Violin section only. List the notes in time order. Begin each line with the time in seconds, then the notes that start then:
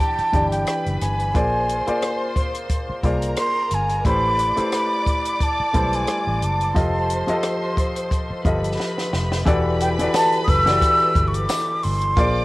Already playing: G4 G5
0.67 B4 B5
1.35 C5 C6
3.04 A#4 A#5
4.04 D5 D6
6.76 C5 C6
8.44 B4 B5
9.45 B4 B5
12.17 D5 D6